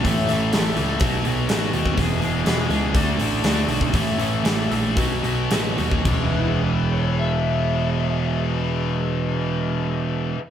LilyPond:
<<
  \new Staff \with { instrumentName = "Electric slide guitar" } { \time 4/4 \key e \major \tempo 4 = 114 r1 | r1 | r1 | r8 e'16 gis'16 b'8 cis''8 e''2~ |
e''1 | }
  \new Staff \with { instrumentName = "Distorted electric guitar" } { \time 4/4 \key e \major <a, e a cis' e'>8 <a, e a cis' e'>8 <a, e a cis' e'>8 <a, e a cis' e'>8 <b, fis b dis' fis'>8 <b, fis b dis' fis'>8 <b, fis b dis' fis'>8 <b, fis b dis' fis'>8 | <e, b, e gis b gis'>8 <e, b, e gis b gis'>8 <e, b, e gis b gis'>8 <e, b, e gis b gis'>8 <d a d' fis'>8 <d a d' fis'>8 <d a d' fis'>8 <d a d' fis'>8 | <a, e a cis' e'>8 <a, e a cis' e'>8 <a, e a cis' e'>8 <a, e a cis' e'>8 <b, fis b dis' fis'>8 <b, fis b dis' fis'>8 <b, fis b dis' fis'>8 <b, fis b dis' fis'>8 | <e, b, e gis b e'>1~ |
<e, b, e gis b e'>1 | }
  \new Staff \with { instrumentName = "Twelve-string acoustic guitar" } { \time 4/4 \key e \major <a, e a cis' e'>8 <e a cis' e'>8 <a, cis' e'>8 <e a>16 <a cis' e'>16 <b, fis b dis' fis'>16 <dis' fis'>16 r8 b16 <dis' fis'>16 <fis dis' fis'>8 | <e, b, e gis b gis'>8 <e gis b gis'>8 <e, b, e gis b gis'>8 <e gis b>16 <gis b gis'>16 <d a>16 <a d' fis'>16 <d fis'>8 <d a d' fis'>16 <a fis'>16 <a fis'>8 | <a, e a cis' a'>8 e8 <a, e a>8 <e cis'>16 a16 fis16 b16 r8 <b, fis dis' fis'>16 b16 <fis dis' fis'>8 | <e b e' gis'>1~ |
<e b e' gis'>1 | }
  \new Staff \with { instrumentName = "Overdriven electric guitar" } { \clef bass \time 4/4 \key e \major <a, e a>8 <a, e a>8 <a, e a>8 <a, e a>8 <b, fis b>8 <b, fis b>8 <b, fis b>8 <b, fis b>8 | <e, b, e>8 <e, b, e>8 <e, b, e>8 <e, b, e>8 <d a d'>8 <d a d'>8 <d a d'>8 <d a d'>8 | <a, e a>8 <a, e a>8 <a, e a>8 <a, e a>8 <b, fis b>8 <b, fis b>8 <b, fis b>8 <b, fis b>8 | <e, b, e>1~ |
<e, b, e>1 | }
  \new Staff \with { instrumentName = "Picked electric bass" } { \clef bass \time 4/4 \key e \major a,,8 a,,8 a,,8 cis,8 b,,8 b,,8 a,,8 dis,8 | e,,8 e,,8 e,,8 cis,8 d,8 a,,8 d,8 b,,8 | a,,8 a,,8 a,,8 ais,,8 b,,8 b,,8 a,,8 dis,8 | e,,1~ |
e,,1 | }
  \new DrumStaff \with { instrumentName = "Drums" } \drummode { \time 4/4 <hho bd>8 hho8 <hho sn>8 hho8 <hho bd>8 hho8 <hho sn>8 hho16 bd16 | <hho bd>8 hho8 <hho sn>8 hho8 <hho bd>8 hho8 <hho sn>8 hho16 bd16 | <hho bd>8 hho8 <hho sn>8 hho8 <hho bd>8 hho8 <hho sn>8 hho16 bd16 | <cymc bd tomfh>4 r4 r4 r4 |
r4 r4 r4 r4 | }
>>